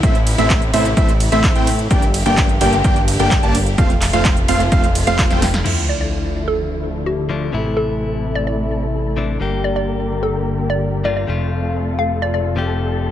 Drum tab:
CC |----------------|----------------|----------------|x---------------|
RD |--x---x---x---x-|--x---x---x---x-|--x---x---x---x-|----------------|
HH |xxoxxxoxxxoxxxox|xxoxxxoxxxoxxxox|xxoxxxoxxxoxxxox|----------------|
CP |----x-------x---|----x-------x---|--x-x-------x---|----------------|
SD |----------------|----------------|-------------ooo|----------------|
BD |o---o---o---o---|o---o---o---o---|o---o---o---o---|----------------|

CC |----------------|----------------|----------------|
RD |----------------|----------------|----------------|
HH |----------------|----------------|----------------|
CP |----------------|----------------|----------------|
SD |----------------|----------------|----------------|
BD |----------------|----------------|----------------|